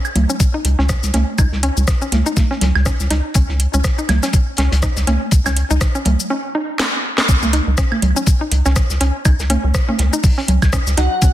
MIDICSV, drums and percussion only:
0, 0, Header, 1, 2, 480
1, 0, Start_track
1, 0, Tempo, 491803
1, 1352, Time_signature, 4, 2, 24, 8
1, 11059, End_track
2, 0, Start_track
2, 0, Title_t, "Drums"
2, 48, Note_on_c, 9, 76, 60
2, 49, Note_on_c, 9, 69, 27
2, 145, Note_off_c, 9, 76, 0
2, 146, Note_off_c, 9, 69, 0
2, 150, Note_on_c, 9, 42, 66
2, 151, Note_on_c, 9, 48, 57
2, 151, Note_on_c, 9, 64, 78
2, 152, Note_off_c, 9, 42, 0
2, 152, Note_on_c, 9, 42, 86
2, 249, Note_off_c, 9, 42, 0
2, 249, Note_off_c, 9, 48, 0
2, 249, Note_off_c, 9, 64, 0
2, 288, Note_on_c, 9, 69, 40
2, 386, Note_off_c, 9, 69, 0
2, 389, Note_on_c, 9, 42, 80
2, 391, Note_on_c, 9, 36, 118
2, 391, Note_on_c, 9, 69, 61
2, 487, Note_off_c, 9, 42, 0
2, 489, Note_off_c, 9, 36, 0
2, 489, Note_off_c, 9, 69, 0
2, 631, Note_on_c, 9, 42, 90
2, 637, Note_off_c, 9, 42, 0
2, 637, Note_on_c, 9, 42, 66
2, 734, Note_off_c, 9, 42, 0
2, 770, Note_on_c, 9, 38, 37
2, 867, Note_off_c, 9, 38, 0
2, 871, Note_on_c, 9, 36, 101
2, 871, Note_on_c, 9, 37, 87
2, 871, Note_on_c, 9, 38, 118
2, 871, Note_on_c, 9, 69, 58
2, 877, Note_on_c, 9, 42, 89
2, 968, Note_off_c, 9, 38, 0
2, 969, Note_off_c, 9, 36, 0
2, 969, Note_off_c, 9, 37, 0
2, 969, Note_off_c, 9, 69, 0
2, 975, Note_off_c, 9, 42, 0
2, 1003, Note_on_c, 9, 38, 49
2, 1008, Note_on_c, 9, 69, 39
2, 1100, Note_off_c, 9, 38, 0
2, 1106, Note_off_c, 9, 69, 0
2, 1109, Note_on_c, 9, 42, 71
2, 1111, Note_off_c, 9, 42, 0
2, 1111, Note_on_c, 9, 42, 90
2, 1112, Note_on_c, 9, 48, 65
2, 1115, Note_on_c, 9, 38, 38
2, 1209, Note_off_c, 9, 42, 0
2, 1209, Note_off_c, 9, 48, 0
2, 1212, Note_off_c, 9, 38, 0
2, 1349, Note_on_c, 9, 42, 78
2, 1351, Note_on_c, 9, 36, 110
2, 1351, Note_on_c, 9, 69, 58
2, 1351, Note_on_c, 9, 76, 62
2, 1447, Note_off_c, 9, 42, 0
2, 1448, Note_off_c, 9, 69, 0
2, 1449, Note_off_c, 9, 36, 0
2, 1449, Note_off_c, 9, 76, 0
2, 1488, Note_on_c, 9, 38, 53
2, 1585, Note_off_c, 9, 38, 0
2, 1590, Note_on_c, 9, 42, 62
2, 1591, Note_off_c, 9, 42, 0
2, 1591, Note_on_c, 9, 42, 84
2, 1688, Note_off_c, 9, 42, 0
2, 1728, Note_on_c, 9, 69, 28
2, 1825, Note_off_c, 9, 69, 0
2, 1831, Note_on_c, 9, 36, 100
2, 1831, Note_on_c, 9, 37, 87
2, 1831, Note_on_c, 9, 69, 63
2, 1833, Note_on_c, 9, 42, 77
2, 1840, Note_on_c, 9, 38, 109
2, 1929, Note_off_c, 9, 36, 0
2, 1929, Note_off_c, 9, 37, 0
2, 1929, Note_off_c, 9, 69, 0
2, 1930, Note_off_c, 9, 42, 0
2, 1937, Note_off_c, 9, 38, 0
2, 1968, Note_on_c, 9, 69, 28
2, 2065, Note_off_c, 9, 69, 0
2, 2070, Note_on_c, 9, 42, 86
2, 2071, Note_on_c, 9, 48, 55
2, 2074, Note_off_c, 9, 42, 0
2, 2074, Note_on_c, 9, 42, 61
2, 2075, Note_on_c, 9, 38, 48
2, 2169, Note_off_c, 9, 48, 0
2, 2172, Note_off_c, 9, 42, 0
2, 2173, Note_off_c, 9, 38, 0
2, 2208, Note_on_c, 9, 69, 42
2, 2305, Note_off_c, 9, 69, 0
2, 2311, Note_on_c, 9, 36, 110
2, 2311, Note_on_c, 9, 48, 71
2, 2311, Note_on_c, 9, 69, 61
2, 2314, Note_on_c, 9, 38, 107
2, 2315, Note_on_c, 9, 42, 75
2, 2408, Note_off_c, 9, 69, 0
2, 2409, Note_off_c, 9, 36, 0
2, 2409, Note_off_c, 9, 48, 0
2, 2411, Note_off_c, 9, 38, 0
2, 2413, Note_off_c, 9, 42, 0
2, 2453, Note_on_c, 9, 38, 45
2, 2551, Note_off_c, 9, 38, 0
2, 2551, Note_on_c, 9, 42, 91
2, 2552, Note_on_c, 9, 64, 75
2, 2553, Note_on_c, 9, 38, 103
2, 2555, Note_off_c, 9, 42, 0
2, 2555, Note_on_c, 9, 42, 79
2, 2649, Note_off_c, 9, 64, 0
2, 2651, Note_off_c, 9, 38, 0
2, 2652, Note_off_c, 9, 42, 0
2, 2686, Note_on_c, 9, 38, 44
2, 2689, Note_on_c, 9, 76, 62
2, 2784, Note_off_c, 9, 38, 0
2, 2785, Note_on_c, 9, 38, 105
2, 2786, Note_off_c, 9, 76, 0
2, 2791, Note_on_c, 9, 36, 95
2, 2791, Note_on_c, 9, 37, 88
2, 2791, Note_on_c, 9, 69, 64
2, 2798, Note_on_c, 9, 42, 79
2, 2882, Note_off_c, 9, 38, 0
2, 2888, Note_off_c, 9, 37, 0
2, 2888, Note_off_c, 9, 69, 0
2, 2889, Note_off_c, 9, 36, 0
2, 2896, Note_off_c, 9, 42, 0
2, 2928, Note_on_c, 9, 69, 40
2, 2930, Note_on_c, 9, 38, 48
2, 3025, Note_off_c, 9, 69, 0
2, 3028, Note_off_c, 9, 38, 0
2, 3031, Note_on_c, 9, 38, 53
2, 3031, Note_on_c, 9, 42, 88
2, 3128, Note_off_c, 9, 42, 0
2, 3129, Note_off_c, 9, 38, 0
2, 3262, Note_on_c, 9, 42, 88
2, 3271, Note_on_c, 9, 36, 102
2, 3271, Note_on_c, 9, 69, 65
2, 3360, Note_off_c, 9, 42, 0
2, 3368, Note_off_c, 9, 69, 0
2, 3369, Note_off_c, 9, 36, 0
2, 3405, Note_on_c, 9, 38, 35
2, 3503, Note_off_c, 9, 38, 0
2, 3509, Note_on_c, 9, 42, 57
2, 3511, Note_off_c, 9, 42, 0
2, 3511, Note_on_c, 9, 42, 84
2, 3609, Note_off_c, 9, 42, 0
2, 3648, Note_on_c, 9, 69, 31
2, 3746, Note_off_c, 9, 69, 0
2, 3751, Note_on_c, 9, 36, 95
2, 3751, Note_on_c, 9, 37, 87
2, 3751, Note_on_c, 9, 42, 87
2, 3751, Note_on_c, 9, 69, 66
2, 3758, Note_on_c, 9, 38, 121
2, 3849, Note_off_c, 9, 36, 0
2, 3849, Note_off_c, 9, 37, 0
2, 3849, Note_off_c, 9, 42, 0
2, 3849, Note_off_c, 9, 69, 0
2, 3855, Note_off_c, 9, 38, 0
2, 3888, Note_on_c, 9, 69, 29
2, 3986, Note_off_c, 9, 69, 0
2, 3988, Note_on_c, 9, 38, 96
2, 3990, Note_on_c, 9, 42, 72
2, 3991, Note_off_c, 9, 42, 0
2, 3991, Note_on_c, 9, 42, 85
2, 3991, Note_on_c, 9, 48, 52
2, 3991, Note_on_c, 9, 64, 81
2, 3991, Note_on_c, 9, 76, 65
2, 4085, Note_off_c, 9, 38, 0
2, 4089, Note_off_c, 9, 42, 0
2, 4089, Note_off_c, 9, 48, 0
2, 4089, Note_off_c, 9, 64, 0
2, 4089, Note_off_c, 9, 76, 0
2, 4128, Note_on_c, 9, 69, 42
2, 4131, Note_on_c, 9, 38, 103
2, 4137, Note_on_c, 9, 42, 82
2, 4226, Note_off_c, 9, 69, 0
2, 4228, Note_off_c, 9, 42, 0
2, 4228, Note_on_c, 9, 42, 90
2, 4229, Note_off_c, 9, 38, 0
2, 4231, Note_on_c, 9, 36, 108
2, 4231, Note_on_c, 9, 69, 65
2, 4326, Note_off_c, 9, 42, 0
2, 4329, Note_off_c, 9, 36, 0
2, 4329, Note_off_c, 9, 69, 0
2, 4458, Note_on_c, 9, 42, 73
2, 4471, Note_off_c, 9, 42, 0
2, 4471, Note_on_c, 9, 42, 86
2, 4473, Note_on_c, 9, 38, 107
2, 4569, Note_off_c, 9, 42, 0
2, 4570, Note_off_c, 9, 38, 0
2, 4603, Note_on_c, 9, 38, 97
2, 4612, Note_on_c, 9, 42, 73
2, 4701, Note_off_c, 9, 38, 0
2, 4707, Note_on_c, 9, 38, 110
2, 4709, Note_off_c, 9, 42, 0
2, 4709, Note_on_c, 9, 42, 70
2, 4711, Note_on_c, 9, 36, 94
2, 4712, Note_on_c, 9, 37, 89
2, 4712, Note_on_c, 9, 69, 62
2, 4804, Note_off_c, 9, 38, 0
2, 4807, Note_off_c, 9, 42, 0
2, 4809, Note_off_c, 9, 36, 0
2, 4809, Note_off_c, 9, 37, 0
2, 4809, Note_off_c, 9, 69, 0
2, 4843, Note_on_c, 9, 38, 112
2, 4847, Note_on_c, 9, 42, 75
2, 4848, Note_on_c, 9, 69, 43
2, 4940, Note_off_c, 9, 38, 0
2, 4945, Note_off_c, 9, 42, 0
2, 4946, Note_off_c, 9, 69, 0
2, 4946, Note_on_c, 9, 38, 39
2, 4951, Note_on_c, 9, 42, 85
2, 4951, Note_on_c, 9, 48, 63
2, 5043, Note_off_c, 9, 38, 0
2, 5049, Note_off_c, 9, 42, 0
2, 5049, Note_off_c, 9, 48, 0
2, 5186, Note_on_c, 9, 42, 90
2, 5191, Note_on_c, 9, 36, 110
2, 5192, Note_on_c, 9, 69, 63
2, 5283, Note_off_c, 9, 42, 0
2, 5289, Note_off_c, 9, 36, 0
2, 5289, Note_off_c, 9, 69, 0
2, 5324, Note_on_c, 9, 38, 53
2, 5328, Note_on_c, 9, 69, 31
2, 5328, Note_on_c, 9, 76, 66
2, 5421, Note_off_c, 9, 38, 0
2, 5425, Note_off_c, 9, 76, 0
2, 5426, Note_off_c, 9, 69, 0
2, 5432, Note_on_c, 9, 42, 88
2, 5433, Note_off_c, 9, 42, 0
2, 5433, Note_on_c, 9, 42, 68
2, 5530, Note_off_c, 9, 42, 0
2, 5569, Note_on_c, 9, 69, 31
2, 5666, Note_off_c, 9, 69, 0
2, 5670, Note_on_c, 9, 42, 78
2, 5671, Note_on_c, 9, 36, 97
2, 5671, Note_on_c, 9, 37, 90
2, 5671, Note_on_c, 9, 38, 122
2, 5671, Note_on_c, 9, 69, 66
2, 5767, Note_off_c, 9, 42, 0
2, 5768, Note_off_c, 9, 38, 0
2, 5769, Note_off_c, 9, 36, 0
2, 5769, Note_off_c, 9, 37, 0
2, 5769, Note_off_c, 9, 69, 0
2, 5809, Note_on_c, 9, 69, 31
2, 5906, Note_off_c, 9, 69, 0
2, 5907, Note_on_c, 9, 42, 66
2, 5911, Note_on_c, 9, 48, 52
2, 5911, Note_on_c, 9, 64, 86
2, 5912, Note_off_c, 9, 42, 0
2, 5912, Note_on_c, 9, 42, 88
2, 6009, Note_off_c, 9, 42, 0
2, 6009, Note_off_c, 9, 48, 0
2, 6009, Note_off_c, 9, 64, 0
2, 6049, Note_on_c, 9, 69, 45
2, 6146, Note_off_c, 9, 69, 0
2, 6632, Note_on_c, 9, 38, 110
2, 6729, Note_off_c, 9, 38, 0
2, 7008, Note_on_c, 9, 38, 72
2, 7106, Note_off_c, 9, 38, 0
2, 7111, Note_on_c, 9, 36, 113
2, 7112, Note_on_c, 9, 69, 66
2, 7117, Note_on_c, 9, 42, 82
2, 7209, Note_off_c, 9, 36, 0
2, 7209, Note_off_c, 9, 69, 0
2, 7214, Note_off_c, 9, 42, 0
2, 7246, Note_on_c, 9, 38, 37
2, 7248, Note_on_c, 9, 48, 68
2, 7248, Note_on_c, 9, 69, 31
2, 7344, Note_off_c, 9, 38, 0
2, 7345, Note_off_c, 9, 48, 0
2, 7346, Note_off_c, 9, 69, 0
2, 7350, Note_on_c, 9, 42, 70
2, 7351, Note_off_c, 9, 42, 0
2, 7351, Note_on_c, 9, 42, 91
2, 7449, Note_off_c, 9, 42, 0
2, 7591, Note_on_c, 9, 36, 115
2, 7591, Note_on_c, 9, 37, 97
2, 7591, Note_on_c, 9, 69, 66
2, 7592, Note_on_c, 9, 42, 81
2, 7597, Note_on_c, 9, 38, 109
2, 7689, Note_off_c, 9, 36, 0
2, 7689, Note_off_c, 9, 37, 0
2, 7689, Note_off_c, 9, 42, 0
2, 7689, Note_off_c, 9, 69, 0
2, 7695, Note_off_c, 9, 38, 0
2, 7728, Note_on_c, 9, 48, 69
2, 7728, Note_on_c, 9, 76, 66
2, 7826, Note_off_c, 9, 48, 0
2, 7826, Note_off_c, 9, 76, 0
2, 7830, Note_on_c, 9, 42, 67
2, 7831, Note_off_c, 9, 42, 0
2, 7831, Note_on_c, 9, 42, 91
2, 7831, Note_on_c, 9, 64, 84
2, 7929, Note_off_c, 9, 42, 0
2, 7929, Note_off_c, 9, 64, 0
2, 7968, Note_on_c, 9, 69, 44
2, 8066, Note_off_c, 9, 69, 0
2, 8067, Note_on_c, 9, 42, 77
2, 8071, Note_on_c, 9, 36, 120
2, 8071, Note_on_c, 9, 69, 68
2, 8164, Note_off_c, 9, 42, 0
2, 8169, Note_off_c, 9, 36, 0
2, 8169, Note_off_c, 9, 69, 0
2, 8311, Note_on_c, 9, 42, 91
2, 8315, Note_off_c, 9, 42, 0
2, 8315, Note_on_c, 9, 42, 68
2, 8413, Note_off_c, 9, 42, 0
2, 8448, Note_on_c, 9, 69, 30
2, 8451, Note_on_c, 9, 38, 34
2, 8546, Note_off_c, 9, 69, 0
2, 8548, Note_off_c, 9, 38, 0
2, 8549, Note_on_c, 9, 38, 104
2, 8551, Note_on_c, 9, 36, 117
2, 8552, Note_on_c, 9, 37, 93
2, 8552, Note_on_c, 9, 69, 67
2, 8554, Note_on_c, 9, 42, 77
2, 8647, Note_off_c, 9, 38, 0
2, 8649, Note_off_c, 9, 36, 0
2, 8649, Note_off_c, 9, 37, 0
2, 8649, Note_off_c, 9, 69, 0
2, 8651, Note_off_c, 9, 42, 0
2, 8685, Note_on_c, 9, 38, 54
2, 8688, Note_on_c, 9, 69, 43
2, 8782, Note_off_c, 9, 38, 0
2, 8786, Note_off_c, 9, 69, 0
2, 8787, Note_on_c, 9, 38, 42
2, 8788, Note_on_c, 9, 42, 66
2, 8791, Note_off_c, 9, 42, 0
2, 8791, Note_on_c, 9, 42, 91
2, 8885, Note_off_c, 9, 38, 0
2, 8889, Note_off_c, 9, 42, 0
2, 9031, Note_on_c, 9, 36, 118
2, 9031, Note_on_c, 9, 42, 83
2, 9031, Note_on_c, 9, 69, 62
2, 9031, Note_on_c, 9, 76, 67
2, 9128, Note_off_c, 9, 42, 0
2, 9129, Note_off_c, 9, 36, 0
2, 9129, Note_off_c, 9, 69, 0
2, 9129, Note_off_c, 9, 76, 0
2, 9168, Note_on_c, 9, 38, 58
2, 9168, Note_on_c, 9, 69, 29
2, 9266, Note_off_c, 9, 38, 0
2, 9266, Note_off_c, 9, 69, 0
2, 9269, Note_on_c, 9, 42, 62
2, 9271, Note_off_c, 9, 42, 0
2, 9271, Note_on_c, 9, 42, 98
2, 9271, Note_on_c, 9, 48, 54
2, 9369, Note_off_c, 9, 42, 0
2, 9369, Note_off_c, 9, 48, 0
2, 9511, Note_on_c, 9, 36, 114
2, 9511, Note_on_c, 9, 37, 101
2, 9511, Note_on_c, 9, 69, 67
2, 9514, Note_on_c, 9, 42, 90
2, 9518, Note_on_c, 9, 38, 124
2, 9609, Note_off_c, 9, 36, 0
2, 9609, Note_off_c, 9, 37, 0
2, 9609, Note_off_c, 9, 69, 0
2, 9612, Note_off_c, 9, 42, 0
2, 9615, Note_off_c, 9, 38, 0
2, 9648, Note_on_c, 9, 48, 71
2, 9746, Note_off_c, 9, 48, 0
2, 9746, Note_on_c, 9, 42, 68
2, 9751, Note_off_c, 9, 42, 0
2, 9751, Note_on_c, 9, 42, 98
2, 9752, Note_on_c, 9, 38, 48
2, 9849, Note_off_c, 9, 42, 0
2, 9850, Note_off_c, 9, 38, 0
2, 9888, Note_on_c, 9, 69, 43
2, 9986, Note_off_c, 9, 69, 0
2, 9991, Note_on_c, 9, 36, 127
2, 9991, Note_on_c, 9, 69, 65
2, 9994, Note_on_c, 9, 46, 73
2, 10089, Note_off_c, 9, 36, 0
2, 10089, Note_off_c, 9, 69, 0
2, 10091, Note_off_c, 9, 46, 0
2, 10126, Note_on_c, 9, 38, 47
2, 10224, Note_off_c, 9, 38, 0
2, 10231, Note_on_c, 9, 42, 97
2, 10231, Note_on_c, 9, 64, 83
2, 10232, Note_off_c, 9, 42, 0
2, 10232, Note_on_c, 9, 42, 68
2, 10329, Note_off_c, 9, 64, 0
2, 10330, Note_off_c, 9, 42, 0
2, 10368, Note_on_c, 9, 36, 68
2, 10368, Note_on_c, 9, 69, 30
2, 10368, Note_on_c, 9, 76, 63
2, 10372, Note_on_c, 9, 38, 53
2, 10465, Note_off_c, 9, 36, 0
2, 10466, Note_off_c, 9, 69, 0
2, 10466, Note_off_c, 9, 76, 0
2, 10468, Note_on_c, 9, 42, 82
2, 10469, Note_off_c, 9, 38, 0
2, 10471, Note_on_c, 9, 36, 114
2, 10471, Note_on_c, 9, 37, 100
2, 10471, Note_on_c, 9, 69, 63
2, 10475, Note_on_c, 9, 38, 122
2, 10565, Note_off_c, 9, 42, 0
2, 10569, Note_off_c, 9, 36, 0
2, 10569, Note_off_c, 9, 37, 0
2, 10569, Note_off_c, 9, 69, 0
2, 10572, Note_off_c, 9, 38, 0
2, 10608, Note_on_c, 9, 69, 43
2, 10609, Note_on_c, 9, 38, 51
2, 10706, Note_off_c, 9, 69, 0
2, 10707, Note_off_c, 9, 38, 0
2, 10707, Note_on_c, 9, 38, 60
2, 10709, Note_on_c, 9, 42, 68
2, 10712, Note_off_c, 9, 42, 0
2, 10712, Note_on_c, 9, 42, 97
2, 10805, Note_off_c, 9, 38, 0
2, 10809, Note_off_c, 9, 42, 0
2, 10948, Note_on_c, 9, 42, 78
2, 10951, Note_on_c, 9, 36, 119
2, 10951, Note_on_c, 9, 69, 59
2, 11046, Note_off_c, 9, 42, 0
2, 11049, Note_off_c, 9, 36, 0
2, 11049, Note_off_c, 9, 69, 0
2, 11059, End_track
0, 0, End_of_file